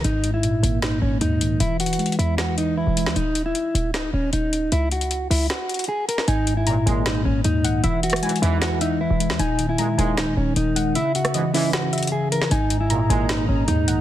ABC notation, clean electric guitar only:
X:1
M:4/4
L:1/16
Q:1/4=154
K:C#dor
V:1 name="Clean electric guitar"
D3 E4- E D2 C2 D4 | E2 F4 E2 F2 D2 E4 | D3 E4- E D2 C2 D4 | E2 F4 E2 F4 G2 A2 |
D3 E4- E D2 C2 D4 | E2 F4 E2 F2 D2 E4 | D3 E4- E D2 C2 D4 | E2 F4 E2 F4 G2 A2 |
D3 E4- E D2 C2 D4 |]